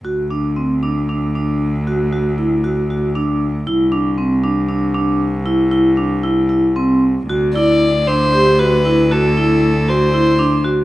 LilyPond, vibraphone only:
\new Staff \with { instrumentName = "Vibraphone" } { \time 7/8 \key d \mixolydian \tempo 4 = 116 fis'8 d'8 c'8 d'8 d'8 d'4 | fis'8 fis'8 e'8 fis'8 fis'8 d'4 | e'8 d'8 c'8 d'8 d'8 d'4 | e'8 e'8 d'8 e'8 e'8 c'4 |
fis'8 e'4 d'8 g'8 fis'8 e'8 | fis'8 e'4 fis'8 e'8 d'8 fis'8 | }